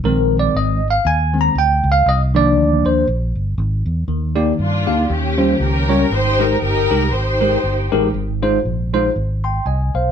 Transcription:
0.04 fingered electric bass A#1, tine electric piano D#3 G#3 C4 A#4
0.39 tine electric piano D5
0.54 fingered electric bass G#1, tine electric piano D#5
0.91 tine electric piano F5
1.05 fingered electric bass D#2, tine electric piano G#5
1.33 tine electric piano D#3 G#3 C4
1.41 tine electric piano A#5
1.55 fingered electric bass D2, tine electric piano G5
1.84 fingered electric bass C#2
1.92 tine electric piano F5
2.06 fingered electric bass C2, tine electric piano D#5
2.34 tine electric piano D#3 F3 A#3 D4 D5
2.57 fingered electric bass D2
2.85 fingered electric bass D#2, tine electric piano C5
3.07 fingered electric bass A#1
3.35 fingered electric bass G1
3.58 fingered electric bass G#1
3.86 fingered electric bass E2
4.08 fingered electric bass D#2, tine electric piano D#3
4.36 tine electric piano A#3 D#4 G4 D5
4.59 fingered electric bass G2, string section A#3 D4 F4
4.87 fingered electric bass D2, tine electric piano A#3 D#4 G4 F5
5.10 fingered electric bass D#2, tine electric piano D#3, string section A#3 C#4 G4
5.38 tine electric piano G3 C#4 F4 C5
5.60 fingered electric bass C#2, string section C#4 G4 A#4
5.89 tine electric piano G3 C#4 F4 C#5
6.10 fingered electric bass G#1, tine electric piano G#2, string section D#4 G4 C5
6.40 tine electric piano G#3 D#4 G4 C5, string section A#4
6.61 fingered electric bass G1, string section D#4 G4 A#4
6.90 fingered electric bass C2, tine electric piano G#3 D#4 G4 A#4
7.12 fingered electric bass G#1, string section D#4 G4 C5
7.41 tine electric piano G#3 D#4 G4 A#4
7.64 fingered electric bass G1
7.92 fingered electric bass A1, tine electric piano G#3 D#4 G4 A#4
8.14 fingered electric bass G#1, tine electric piano G#2
8.42 tine electric piano G#3 D#4 F4 C5
8.65 fingered electric bass A#1
8.93 tine electric piano G#3 D#4 F4 C5
9.16 fingered electric bass G#1
9.44 tine electric piano G5 C6
9.66 fingered electric bass C2, tine electric piano D#5 G#5
9.94 fingered electric bass B1, tine electric piano C5 F5

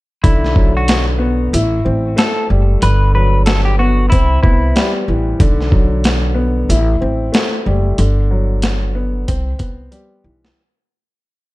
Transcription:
0.24 upright bass B1, upright piano D3, clean electric guitar E4, kick, closed hi-hat
0.44 snare
0.55 upright piano F#3, kick
0.77 clean electric guitar F#4
0.88 snare, closed hi-hat
1.18 upright piano B3
1.53 upright bass A1, upright piano E4, closed hi-hat
1.85 upright bass A1, upright piano C4
2.16 upright piano A3, clean electric guitar A4, snare, closed hi-hat
2.50 upright bass F#1, upright piano G3
2.82 upright bass G1, upright piano D3, clean electric guitar B4, closed hi-hat
3.15 upright piano F#3, clean electric guitar B4
3.46 clean electric guitar A4, snare, closed hi-hat
3.65 clean electric guitar G4
3.79 upright piano B3, clean electric guitar F#4
4.10 upright bass C2, upright piano C4, clean electric guitar E4, kick, closed hi-hat
4.43 upright bass C2, upright piano B3, clean electric guitar E4, kick
4.75 upright piano G3, snare, closed hi-hat
5.08 upright bass A1, upright piano E3
5.40 upright bass B1, upright piano D3, kick, closed hi-hat
5.60 snare
5.71 upright piano F#3, kick
6.04 snare, closed hi-hat
6.34 upright piano B3
6.69 upright bass A1, upright piano E4, closed hi-hat
7.01 upright bass A1, upright piano C4
7.32 upright piano A3, snare, closed hi-hat
7.66 upright bass F#1, upright piano G3
7.98 upright bass G1, upright piano D3, closed hi-hat
8.31 upright piano F#3
8.62 snare, closed hi-hat
8.95 upright piano B3
9.28 upright bass C2, upright piano C4, kick, closed hi-hat
9.59 upright bass C2, upright piano B3, kick, closed hi-hat
9.91 upright piano G3, closed hi-hat
10.24 upright bass B1, upright piano E3
10.45 snare

